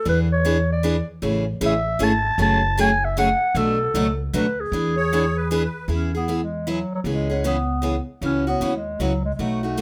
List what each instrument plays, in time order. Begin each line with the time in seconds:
0.05 upright bass E2, steel-string acoustic guitar E3 B3 D4 G#4, clarinet B4
0.33 clarinet C#5
0.45 steel-string acoustic guitar E3 B3 D4 G#4
0.72 clarinet D5
0.83 steel-string acoustic guitar E3 B3 D4 G#4
1.22 upright bass A1, steel-string acoustic guitar C#3 E3 A3 C#4 G#4
1.61 upright bass A1, steel-string acoustic guitar C#3 E3 A3 C#4 G#4
1.66 clarinet E5
1.99 upright bass G#1, steel-string acoustic guitar C#3 E3 A3 C#4 G#4
2.04 clarinet A5
2.38 upright bass F#1, steel-string acoustic guitar C#3 F#3 A3 C#4 G#4
2.42 clarinet A5
2.77 steel-string acoustic guitar C#3 F#3 A3 C#4 G#4, clarinet G#5
3.05 clarinet E5
3.17 steel-string acoustic guitar C#3 F#3 A3 C#4 G#4, clarinet F#5
3.55 upright bass B1, steel-string acoustic guitar B2 F#3 A3 D4 F#4, clarinet A4
3.94 upright bass C#2, steel-string acoustic guitar B2 F#3 A3 D4 F#4
4.33 upright bass D2, steel-string acoustic guitar B2 F#3 A3 D4 F#4, clarinet B4
4.60 clarinet G#4
4.72 upright bass E2, steel-string acoustic guitar E3 B3 D4 G#4
4.97 accordion C#5
5.13 steel-string acoustic guitar E3 B3 D4 G#4
5.36 accordion B4
5.51 steel-string acoustic guitar E3 B3 D4 G#4, accordion B4
5.88 upright bass E2, steel-string acoustic guitar E3 B3 E4 G#4, clarinet C#4
6.15 clarinet B3, steel-string acoustic guitar B3 E4 G#4
6.28 steel-string acoustic guitar E3 B3 E4 G#4
6.44 clarinet G#3
6.67 steel-string acoustic guitar E3 B3 E4 G#4, clarinet F#3
6.95 clarinet F#3
7.04 upright bass C#2, steel-string acoustic guitar C#3 E3 B3 C#4 G#4
7.10 clarinet G#3
7.30 steel-string acoustic guitar B3 C#4 G#4
7.44 steel-string acoustic guitar C#3 E3 B3 C#4 G#4, clarinet B3
7.82 steel-string acoustic guitar C#3 E3 B3 C#4 G#4
8.21 upright bass C#2, steel-string acoustic guitar C#3 E3 B3 C#4 F#4, clarinet C#4
8.47 steel-string acoustic guitar B3 C#4 F#4, clarinet B3
8.60 upright bass D#2, steel-string acoustic guitar C#3 E3 B3 C#4 F#4
8.76 clarinet G#3
8.99 upright bass C#2, steel-string acoustic guitar C#3 E3 B3 C#4 F#4, clarinet F#3
9.25 clarinet G#3
9.35 upright bass B1, steel-string acoustic guitar B2, clarinet G#3
9.39 steel-string acoustic guitar F#3 A3 D#4 F#4, clarinet A3
9.63 steel-string acoustic guitar A3 D#4 F#4
9.77 steel-string acoustic guitar B2 F#3 A3 D#4